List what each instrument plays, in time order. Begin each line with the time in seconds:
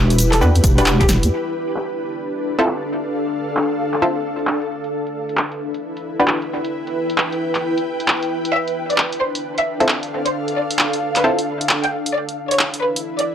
Already playing: wobble bass E1, ambient pad E4 G4 B4
0.10 closed hi-hat, shaker
0.18 closed hi-hat, shaker
0.33 violin section A4, clap, snare, closed hi-hat, shaker
0.41 wobble bass E2, synth stab D4 F#4 G4 B4, shaker
0.55 closed hi-hat, shaker
0.64 wobble bass E1, kick, closed hi-hat, shaker
0.78 synth stab D4 F#4 G4 B4, closed hi-hat, shaker
0.86 clap, shaker
1.00 wobble bass E1, violin section G4, kick, closed hi-hat, shaker
1.09 wobble bass E1, snare, closed hi-hat, shaker
1.23 wobble bass E2, closed hi-hat, shaker
1.32 ambient pad D4
1.68 closed hi-hat
1.76 clap
1.97 ambient pad A4
2.30 ambient pad F5
2.36 closed hi-hat
2.59 synth stab C4 E4 F4 A4
2.67 clap
3.04 closed hi-hat
3.26 closed hi-hat
3.49 closed hi-hat
3.57 clap
3.71 closed hi-hat
3.94 clap, closed hi-hat
4.02 synth stab C4 E4 F4 A4
4.16 closed hi-hat
4.39 closed hi-hat
4.47 clap
4.62 closed hi-hat
4.84 closed hi-hat
4.93 ambient pad E4
5.05 ambient pad B4, closed hi-hat
5.29 closed hi-hat
5.37 clap
5.52 closed hi-hat
5.74 closed hi-hat
5.97 closed hi-hat
6.20 synth stab D4 F#4 G4 B4, closed hi-hat
6.28 clap
6.35 ambient pad G5
6.42 closed hi-hat
6.65 closed hi-hat
6.87 closed hi-hat
7.10 closed hi-hat
7.18 clap
7.32 closed hi-hat
7.55 clap, closed hi-hat
7.78 closed hi-hat
8.00 closed hi-hat
8.08 clap
8.23 closed hi-hat
8.45 closed hi-hat
8.53 ambient pad D4, violin section E5
8.68 closed hi-hat
8.90 violin section D5, closed hi-hat
8.98 clap
9.12 closed hi-hat
9.17 violin section C5, ambient pad F5
9.35 closed hi-hat
9.40 ambient pad A4
9.58 violin section E5, closed hi-hat
9.80 synth stab C4 E4 F4 A4, closed hi-hat
9.89 clap
10.03 closed hi-hat
10.25 violin section C5, closed hi-hat
10.48 closed hi-hat
10.57 violin section D5
10.71 closed hi-hat
10.79 clap
10.93 closed hi-hat
11.16 violin section B4, clap, closed hi-hat
11.24 synth stab C4 E4 F4 A4
11.39 closed hi-hat
11.61 closed hi-hat
11.69 clap
11.84 violin section G5, closed hi-hat
12.06 closed hi-hat
12.14 ambient pad E4, violin section D5
12.29 closed hi-hat
12.51 ambient pad B4, violin section C#5, closed hi-hat
12.59 clap
12.74 closed hi-hat
12.82 violin section B4
12.96 closed hi-hat
13.19 violin section D5, closed hi-hat
13.23 ambient pad G5